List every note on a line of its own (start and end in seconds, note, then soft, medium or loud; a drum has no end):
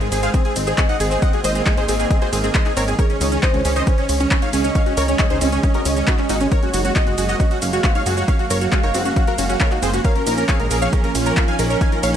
0.00 0.10 G#1 medium
0.00 6.48 D#3 medium
0.00 1.20 G#3 medium
0.00 0.08 G#3 medium
0.00 2.95 C4 medium
0.00 0.08 G#4 medium
0.00 0.47 C5 loud
0.00 closed hi-hat medium
0.12 0.29 G#1 medium
0.12 0.19 G#4 medium
0.12 0.22 G#4 medium
0.12 open hi-hat loud
0.12 ride medium
0.12 shaker medium
0.23 0.30 G#4 medium
0.23 0.30 C5 medium
0.23 0.30 F5 medium
0.23 0.30 F5 loud
0.23 closed hi-hat medium
0.23 shaker soft
0.34 0.44 C4 loud
0.34 0.41 G#4 medium
0.34 kick loud
0.34 closed hi-hat medium
0.34 shaker soft
0.45 0.55 C4 medium
0.45 0.52 G#4 medium
0.45 closed hi-hat medium
0.56 0.74 G#1 medium
0.56 0.63 C4 medium
0.56 0.98 D#5 medium
0.56 open hi-hat loud
0.56 ride medium
0.56 shaker medium
0.67 0.74 G#4 medium
0.67 0.71 C5 medium
0.67 closed hi-hat medium
0.67 shaker soft
0.78 0.88 C4 medium
0.78 0.85 G#4 medium
0.78 kick loud
0.78 clap loud
0.78 closed hi-hat medium
0.78 shaker soft
0.89 0.96 D#4 medium
0.89 0.96 D#5 medium
0.89 0.96 F#5 loud
0.89 closed hi-hat medium
1.00 1.18 G#1 medium
1.00 1.07 G#4 medium
1.00 1.10 G#4 medium
1.00 1.07 G#4 medium
1.00 2.90 D#5 loud
1.00 open hi-hat loud
1.00 ride medium
1.00 shaker medium
1.11 1.18 G#4 medium
1.11 1.18 C5 medium
1.11 closed hi-hat medium
1.11 shaker soft
1.22 2.97 A#3 medium
1.22 1.32 C4 loud
1.22 1.29 D#5 medium
1.22 1.29 F#5 medium
1.22 kick loud
1.22 closed hi-hat medium
1.22 shaker soft
1.33 1.40 F#4 medium
1.33 1.40 G#4 medium
1.33 closed hi-hat medium
1.44 1.62 G#1 loud
1.44 1.51 C5 medium
1.44 1.51 D#5 loud
1.44 open hi-hat loud
1.44 ride medium
1.44 shaker medium
1.55 1.62 G#4 medium
1.55 1.59 C5 medium
1.55 closed hi-hat medium
1.55 shaker soft
1.66 1.76 G#3 loud
1.66 1.73 G#4 medium
1.66 kick loud
1.66 clap loud
1.66 closed hi-hat medium
1.66 shaker soft
1.77 1.86 G#1 loud
1.77 1.84 D#4 medium
1.77 1.84 G#4 medium
1.77 1.84 C5 medium
1.77 closed hi-hat medium
1.88 2.06 G#1 loud
1.88 1.95 C4 loud
1.88 1.95 G#4 medium
1.88 open hi-hat loud
1.88 ride medium
1.88 shaker medium
2.00 2.06 C4 medium
2.00 2.06 G#4 medium
2.00 shaker soft
2.10 2.21 C4 loud
2.10 2.17 G#4 medium
2.10 kick loud
2.10 closed hi-hat medium
2.10 shaker soft
2.22 2.28 F#4 medium
2.22 2.28 G#4 medium
2.22 2.28 C5 medium
2.22 2.28 C5 loud
2.22 closed hi-hat medium
2.33 2.50 G#1 medium
2.33 2.39 C4 loud
2.33 2.39 G#4 medium
2.33 open hi-hat loud
2.33 ride medium
2.33 shaker medium
2.44 2.48 C4 loud
2.44 2.50 G#4 medium
2.44 closed hi-hat medium
2.44 shaker soft
2.55 2.65 G#3 loud
2.55 2.61 C5 medium
2.55 2.61 D#5 medium
2.55 kick loud
2.55 clap loud
2.55 closed hi-hat medium
2.55 shaker soft
2.65 2.72 D#4 medium
2.65 2.72 G#4 medium
2.65 clap soft
2.65 closed hi-hat medium
2.76 2.94 G#1 medium
2.76 2.83 C4 loud
2.76 2.84 A#4 medium
2.76 2.83 C#5 medium
2.76 open hi-hat loud
2.76 ride medium
2.76 shaker medium
2.88 2.94 C4 medium
2.88 2.94 G#4 medium
2.88 closed hi-hat medium
2.88 shaker soft
2.99 10.01 G#3 medium
2.99 6.48 C#4 medium
2.99 3.03 C#4 medium
2.99 3.41 G#4 loud
2.99 3.06 A#4 medium
2.99 3.05 C#5 loud
2.99 3.06 C#5 loud
2.99 kick loud
2.99 closed hi-hat medium
2.99 shaker soft
3.10 3.17 C#4 medium
3.10 3.20 C#4 medium
3.10 3.17 C#4 medium
3.10 closed hi-hat medium
3.21 3.38 C#2 loud
3.21 3.28 C#4 medium
3.21 3.31 D#4 medium
3.21 open hi-hat loud
3.21 ride medium
3.21 shaker medium
3.32 3.39 C#4 medium
3.32 closed hi-hat medium
3.32 shaker soft
3.43 3.53 C4 medium
3.43 4.00 C5 loud
3.43 3.50 C5 medium
3.43 3.50 D#5 loud
3.43 kick loud
3.43 clap loud
3.43 closed hi-hat medium
3.43 shaker soft
3.54 3.63 C#2 medium
3.54 3.61 G#3 medium
3.54 3.61 C#4 medium
3.54 closed hi-hat soft
3.65 3.82 C#2 loud
3.65 3.72 C#4 medium
3.65 3.75 G#4 medium
3.65 open hi-hat loud
3.65 ride medium
3.65 shaker medium
3.76 3.83 C5 medium
3.76 3.83 C#5 medium
3.76 3.83 D#5 loud
3.76 3.83 D#5 medium
3.76 shaker soft
3.87 3.94 C#4 medium
3.87 3.97 C#4 loud
3.87 3.94 C#4 medium
3.87 kick loud
3.87 closed hi-hat medium
3.87 shaker soft
3.98 4.05 C#4 medium
3.98 4.08 C#4 medium
3.98 4.05 C#4 medium
3.98 closed hi-hat medium
4.09 4.27 C#2 medium
4.09 4.16 C#4 medium
4.09 4.51 C#5 loud
4.09 open hi-hat loud
4.09 ride medium
4.09 shaker medium
4.20 4.27 C#4 medium
4.20 4.24 C#5 medium
4.20 closed hi-hat medium
4.20 shaker soft
4.31 4.41 C4 medium
4.31 4.38 C#4 medium
4.31 kick loud
4.31 clap loud
4.31 closed hi-hat medium
4.31 shaker soft
4.42 4.49 D#4 medium
4.42 4.49 C#5 medium
4.42 4.49 F5 loud
4.42 4.49 F5 medium
4.42 closed hi-hat medium
4.53 4.71 C#2 medium
4.53 4.60 C#4 medium
4.53 4.63 G#4 medium
4.53 6.43 D#5 loud
4.53 open hi-hat loud
4.53 ride medium
4.53 shaker medium
4.64 4.71 C#4 medium
4.64 4.71 C#5 medium
4.64 closed hi-hat medium
4.64 shaker soft
4.75 4.85 C#4 loud
4.75 4.82 C#5 medium
4.75 4.82 F5 medium
4.75 kick loud
4.75 closed hi-hat medium
4.75 shaker soft
4.86 4.93 C#4 medium
4.86 4.93 F#4 medium
4.86 closed hi-hat soft
4.97 5.15 C#2 loud
4.97 5.04 A#4 medium
4.97 5.04 C#5 loud
4.97 5.04 C#5 medium
4.97 open hi-hat loud
4.97 ride medium
4.97 shaker medium
5.08 5.15 C#4 medium
5.08 5.12 C#5 medium
5.08 closed hi-hat medium
5.08 shaker soft
5.19 5.29 G#3 loud
5.19 5.26 C#4 medium
5.19 kick loud
5.19 clap loud
5.19 closed hi-hat medium
5.19 shaker soft
5.30 5.39 C#2 medium
5.30 5.37 D#4 medium
5.30 5.37 G#4 medium
5.30 5.37 C5 medium
5.30 closed hi-hat soft
5.41 5.59 C#2 medium
5.41 5.48 C4 loud
5.41 5.48 C#4 medium
5.41 open hi-hat loud
5.41 ride medium
5.41 shaker medium
5.52 5.59 C#4 medium
5.52 shaker soft
5.63 5.70 C#4 medium
5.63 5.73 C#4 loud
5.63 kick loud
5.63 closed hi-hat medium
5.63 shaker soft
5.74 5.81 C#4 medium
5.74 5.81 F#4 medium
5.74 5.81 A#4 medium
5.74 closed hi-hat soft
5.85 6.03 C#2 loud
5.85 5.92 C#4 medium
5.85 5.96 C#4 medium
5.85 5.92 C#4 medium
5.85 open hi-hat loud
5.85 ride medium
5.85 shaker medium
5.96 6.03 C#4 medium
5.96 6.03 C#5 medium
5.96 closed hi-hat medium
5.96 shaker soft
6.07 6.14 C#4 medium
6.07 6.14 D#4 medium
6.07 6.14 F#4 medium
6.07 kick loud
6.07 clap loud
6.07 closed hi-hat medium
6.07 shaker soft
6.18 6.25 C#4 medium
6.18 clap soft
6.18 closed hi-hat soft
6.29 6.47 G#1 medium
6.29 6.36 C#4 loud
6.29 6.36 D#4 medium
6.29 6.36 F#4 medium
6.29 6.37 F#4 medium
6.29 open hi-hat loud
6.29 ride medium
6.29 shaker medium
6.41 6.51 G#3 medium
6.41 6.47 C#4 medium
6.41 closed hi-hat medium
6.41 shaker soft
6.52 10.01 F#3 medium
6.52 12.17 A#3 medium
6.52 6.56 C#4 medium
6.52 6.59 A#4 medium
6.52 6.58 C#5 loud
6.52 6.94 C#5 loud
6.52 6.59 C#5 loud
6.52 kick loud
6.52 closed hi-hat medium
6.52 shaker soft
6.63 6.73 C#4 medium
6.63 6.69 F#4 medium
6.63 6.70 F#4 medium
6.63 closed hi-hat soft
6.73 6.91 F#1 loud
6.73 6.84 D#4 medium
6.73 6.80 F#4 medium
6.73 6.81 F#4 medium
6.73 open hi-hat loud
6.73 ride medium
6.73 shaker medium
6.85 6.91 C#4 medium
6.85 6.91 F#4 medium
6.85 6.92 F#4 medium
6.85 closed hi-hat medium
6.85 shaker soft
6.95 7.06 C4 medium
6.95 7.03 F#4 medium
6.95 7.02 D#5 loud
6.95 7.53 D#5 loud
6.95 7.03 D#5 medium
6.95 kick loud
6.95 clap loud
6.95 closed hi-hat medium
6.95 shaker soft
7.07 7.16 F#1 medium
7.07 7.14 G#3 medium
7.07 7.13 F#4 medium
7.07 7.14 F#4 medium
7.07 closed hi-hat soft
7.18 7.35 F#1 medium
7.18 7.24 F#4 medium
7.18 7.25 F#4 medium
7.18 7.28 G#4 medium
7.18 open hi-hat loud
7.18 ride medium
7.18 shaker medium
7.29 7.36 F#4 medium
7.29 7.36 C#5 medium
7.29 7.36 D#5 loud
7.29 7.36 D#5 medium
7.29 closed hi-hat soft
7.29 shaker soft
7.40 7.50 C#4 loud
7.40 7.47 F#4 medium
7.40 kick loud
7.40 closed hi-hat medium
7.40 shaker soft
7.51 7.61 C#4 medium
7.51 7.58 F#4 medium
7.51 closed hi-hat soft
7.62 7.80 F#1 medium
7.62 7.69 C#4 medium
7.62 8.04 F5 loud
7.62 open hi-hat loud
7.62 ride medium
7.62 shaker medium
7.73 7.80 F#4 medium
7.73 7.77 C#5 medium
7.73 closed hi-hat medium
7.73 shaker soft
7.84 7.94 C4 medium
7.84 7.91 F#4 medium
7.84 kick loud
7.84 clap loud
7.84 closed hi-hat medium
7.84 shaker soft
7.95 8.02 D#4 medium
7.95 8.02 C#5 medium
7.95 8.02 F5 medium
7.95 8.02 F5 loud
7.95 closed hi-hat medium
8.06 8.24 F#1 medium
8.06 8.13 F#4 medium
8.06 8.16 G#4 medium
8.06 9.96 F5 loud
8.06 open hi-hat loud
8.06 ride medium
8.06 shaker medium
8.17 8.24 F#4 medium
8.17 8.24 C#5 medium
8.17 closed hi-hat medium
8.17 shaker soft
8.28 8.38 C#4 loud
8.28 8.35 C#5 medium
8.28 8.35 F5 medium
8.28 kick loud
8.28 closed hi-hat medium
8.28 shaker soft
8.39 8.46 F#4 medium
8.39 closed hi-hat medium
8.50 8.68 F#1 loud
8.50 8.57 A#4 medium
8.50 8.57 C#5 medium
8.50 8.57 C#5 loud
8.50 open hi-hat loud
8.50 ride medium
8.50 shaker medium
8.61 8.68 F#4 medium
8.61 8.65 C#5 medium
8.61 closed hi-hat medium
8.61 shaker soft
8.72 8.82 G#3 loud
8.72 8.79 F#4 medium
8.72 kick loud
8.72 clap loud
8.72 closed hi-hat medium
8.72 shaker soft
8.83 8.92 F#1 loud
8.83 8.90 D#4 medium
8.83 8.90 A#4 medium
8.83 8.90 C#5 loud
8.83 8.90 C#5 medium
8.83 closed hi-hat medium
8.94 9.12 F#1 medium
8.94 9.01 C4 loud
8.94 9.01 F#4 medium
8.94 open hi-hat loud
8.94 ride medium
8.94 shaker medium
9.05 9.12 C#4 medium
9.05 9.12 F#4 medium
9.05 closed hi-hat medium
9.05 shaker soft
9.16 9.26 C#4 loud
9.16 9.23 F#4 medium
9.16 kick loud
9.16 closed hi-hat medium
9.16 shaker soft
9.27 9.34 F#4 medium
9.27 9.34 A#4 medium
9.27 9.34 A#4 loud
9.27 closed hi-hat medium
9.38 9.56 F#1 medium
9.38 9.45 C#4 loud
9.38 9.45 F#4 medium
9.38 open hi-hat loud
9.38 ride medium
9.38 shaker medium
9.49 9.53 C#4 loud
9.49 9.56 F#4 medium
9.49 closed hi-hat medium
9.49 shaker soft
9.60 9.70 G#3 loud
9.60 9.67 A#4 medium
9.60 9.67 C#5 loud
9.60 9.67 C#5 medium
9.60 kick loud
9.60 clap loud
9.60 closed hi-hat medium
9.60 shaker soft
9.71 9.78 D#4 medium
9.71 9.78 F#4 medium
9.71 clap soft
9.71 closed hi-hat medium
9.82 10.00 F#1 medium
9.82 9.89 C4 loud
9.82 9.90 G#4 medium
9.82 9.89 C5 medium
9.82 9.90 C5 medium
9.82 open hi-hat loud
9.82 ride medium
9.82 shaker medium
9.93 10.00 C#4 medium
9.93 10.00 F#4 medium
9.93 10.01 F#4 medium
9.93 closed hi-hat medium
9.93 shaker soft
10.04 12.17 F3 medium
10.04 10.09 C#4 medium
10.04 12.17 C#4 medium
10.04 10.47 A#4 loud
10.04 10.12 C#5 medium
10.04 10.11 F5 loud
10.04 10.12 F5 loud
10.04 kick loud
10.04 closed hi-hat medium
10.04 shaker soft
10.15 10.26 C#4 medium
10.15 10.22 A#4 medium
10.15 10.23 A#4 medium
10.15 closed hi-hat medium
10.26 10.44 A#1 loud
10.26 10.37 D#4 medium
10.26 10.33 A#4 medium
10.26 10.34 A#4 medium
10.26 open hi-hat loud
10.26 ride medium
10.26 shaker medium
10.37 10.44 C#4 medium
10.37 10.44 A#4 medium
10.37 10.45 A#4 medium
10.37 closed hi-hat medium
10.37 shaker soft
10.48 10.59 C4 medium
10.48 11.06 G#4 loud
10.48 10.56 C#5 medium
10.48 10.56 F5 loud
10.48 10.56 F5 medium
10.48 kick loud
10.48 clap loud
10.48 closed hi-hat medium
10.48 shaker soft
10.59 10.69 A#1 medium
10.59 10.66 G#3 medium
10.59 10.67 A#4 medium
10.59 closed hi-hat medium
10.71 10.88 A#1 medium
10.71 10.81 G#4 medium
10.71 10.78 A#4 medium
10.71 open hi-hat loud
10.71 ride medium
10.71 shaker medium
10.82 10.88 C#5 medium
10.82 10.89 C#5 medium
10.82 10.89 F5 loud
10.82 10.89 F5 medium
10.82 closed hi-hat medium
10.82 shaker soft
10.93 11.03 C#4 loud
10.93 11.00 A#4 medium
10.93 kick loud
10.93 closed hi-hat medium
10.93 shaker soft
11.04 11.14 C#4 medium
11.04 11.11 A#4 medium
11.04 closed hi-hat soft
11.15 11.33 A#1 medium
11.15 11.22 C#4 medium
11.15 11.57 F4 loud
11.15 open hi-hat loud
11.15 ride medium
11.15 shaker medium
11.26 11.33 A#4 medium
11.26 11.30 C#5 medium
11.26 closed hi-hat medium
11.26 shaker soft
11.37 11.47 C4 medium
11.37 11.44 A#4 medium
11.37 kick loud
11.37 clap loud
11.37 closed hi-hat medium
11.37 shaker soft
11.48 11.55 D#4 medium
11.48 11.55 F5 medium
11.48 11.55 G#5 loud
11.48 11.55 G#5 medium
11.48 closed hi-hat medium
11.59 11.77 A#1 medium
11.59 12.17 D#4 loud
11.59 11.69 G#4 medium
11.59 11.66 A#4 medium
11.59 open hi-hat loud
11.59 ride medium
11.59 shaker medium
11.70 11.77 A#4 medium
11.70 11.77 C#5 medium
11.70 closed hi-hat medium
11.70 shaker soft
11.81 11.91 C#4 loud
11.81 11.88 F5 medium
11.81 11.88 G#5 medium
11.81 kick loud
11.81 closed hi-hat medium
11.81 shaker soft
11.92 11.99 F4 medium
11.92 11.99 A#4 medium
11.92 closed hi-hat medium
12.03 12.17 A#1 loud
12.03 12.10 C#5 medium
12.03 12.10 F5 loud
12.03 open hi-hat loud
12.03 ride medium
12.03 shaker medium